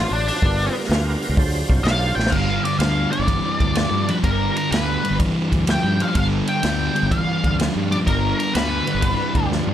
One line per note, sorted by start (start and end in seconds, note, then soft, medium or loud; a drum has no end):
0.00 0.40 F#3 medium
0.00 0.41 D4 medium
0.00 0.13 F4 loud
0.00 0.40 F4 medium
0.00 0.41 C5 medium
0.11 0.29 A1 loud
0.11 0.27 D4 medium
0.28 0.73 D4 medium
0.28 open hi-hat medium
0.42 0.68 G1 loud
0.42 1.36 G3 medium
0.42 1.36 B3 medium
0.42 1.35 F4 medium
0.42 1.36 A#4 medium
0.42 kick loud
0.42 open hi-hat medium
0.75 open hi-hat medium
0.84 snare soft
0.89 1.15 D2 loud
0.89 snare loud
0.89 open hi-hat loud
1.22 open hi-hat medium
1.29 1.35 C#2 loud
1.36 1.62 D2 loud
1.36 2.31 F#3 medium
1.36 2.31 D4 medium
1.36 2.31 F4 medium
1.36 2.32 C5 medium
1.36 kick loud
1.36 open hi-hat loud
1.69 1.83 C2 loud
1.69 kick medium
1.69 open hi-hat medium
1.84 2.13 B1 loud
1.84 2.18 F5 loud
1.84 snare loud
1.84 open hi-hat loud
2.15 2.30 A1 medium
2.15 2.30 G5 loud
2.15 snare medium
2.26 snare loud
2.30 2.58 G1 loud
2.30 2.77 G2 medium
2.30 2.77 D3 medium
2.30 6.11 G3 medium
2.30 6.11 B3 medium
2.30 2.62 F5 loud
2.30 6.11 F5 medium
2.30 6.11 A#5 medium
2.30 kick loud
2.30 crash loud
2.64 2.78 D5 medium
2.64 ride medium
2.79 3.05 D2 medium
2.79 3.09 G2 medium
2.79 3.10 D3 medium
2.79 3.11 F5 loud
2.79 snare loud
2.79 ride medium
3.12 3.26 G2 medium
3.12 3.26 D3 medium
3.12 3.59 D5 medium
3.12 ride medium
3.19 3.38 G1 loud
3.27 3.72 G2 medium
3.27 3.72 E3 loud
3.27 kick loud
3.27 ride medium
3.60 3.85 D2 medium
3.60 3.76 D5 medium
3.60 kick medium
3.60 ride medium
3.75 4.05 G2 medium
3.75 4.05 F3 medium
3.75 4.10 D5 medium
3.75 snare loud
3.75 ride medium
3.91 4.10 G2 medium
4.08 4.22 G2 medium
4.08 4.23 F3 medium
4.08 4.15 B4 medium
4.08 ride medium
4.24 4.49 G1 loud
4.24 4.69 G2 medium
4.24 4.69 D3 medium
4.24 4.56 A#4 medium
4.24 kick loud
4.24 ride medium
4.56 4.71 A#4 medium
4.56 ride medium
4.71 4.96 D2 medium
4.71 5.01 G2 medium
4.71 5.01 D3 medium
4.71 5.16 B4 medium
4.71 snare loud
4.71 ride loud
5.04 5.18 G2 medium
5.04 5.18 D3 medium
5.04 ride medium
5.11 5.30 G1 medium
5.20 5.64 G2 medium
5.20 5.65 E3 loud
5.20 kick loud
5.20 ride medium
5.52 5.77 D2 medium
5.52 kick medium
5.52 ride medium
5.67 5.96 G2 medium
5.67 5.97 F3 medium
5.67 6.02 G5 loud
5.67 snare loud
5.67 ride loud
5.84 6.02 G2 medium
6.00 6.14 G2 medium
6.00 6.14 F3 medium
6.00 6.15 F5 medium
6.00 ride medium
6.14 6.40 G1 medium
6.14 6.60 G2 medium
6.14 6.60 D3 medium
6.14 9.74 G3 medium
6.14 9.74 B3 medium
6.14 9.74 D4 medium
6.14 9.74 F5 medium
6.14 6.25 F5 medium
6.14 kick loud
6.14 ride loud
6.47 7.13 G5 loud
6.47 ride medium
6.62 6.88 D2 medium
6.62 6.92 G2 medium
6.62 6.92 D3 medium
6.62 snare loud
6.62 ride loud
6.95 7.09 G2 medium
6.95 7.09 D3 medium
6.95 ride medium
7.03 7.22 G1 loud
7.10 7.55 G2 medium
7.10 7.56 E3 loud
7.10 7.56 F5 medium
7.10 kick loud
7.10 ride medium
7.44 7.68 D2 loud
7.44 kick medium
7.44 ride medium
7.59 7.88 G2 medium
7.59 7.88 F3 loud
7.59 snare loud
7.59 ride medium
7.76 7.94 G2 medium
7.91 8.05 G2 medium
7.91 8.05 F3 medium
7.91 7.97 D5 loud
7.91 ride medium
8.07 8.32 G1 loud
8.07 8.51 G2 medium
8.07 8.52 D3 loud
8.07 8.37 A#4 medium
8.07 kick loud
8.07 ride medium
8.39 8.54 A#4 medium
8.39 ride medium
8.54 8.80 D2 medium
8.54 8.84 G2 medium
8.54 8.84 D3 medium
8.54 9.46 B4 medium
8.54 snare loud
8.54 ride loud
8.87 9.00 G2 medium
8.87 9.01 D3 medium
8.87 ride medium
8.95 9.13 G1 loud
9.01 9.47 G2 medium
9.01 9.47 E3 medium
9.01 kick loud
9.01 ride medium
9.35 9.60 D2 medium
9.35 kick medium
9.35 ride medium
9.49 9.74 G2 medium
9.49 9.74 F3 medium
9.49 snare medium
9.67 9.74 G2 medium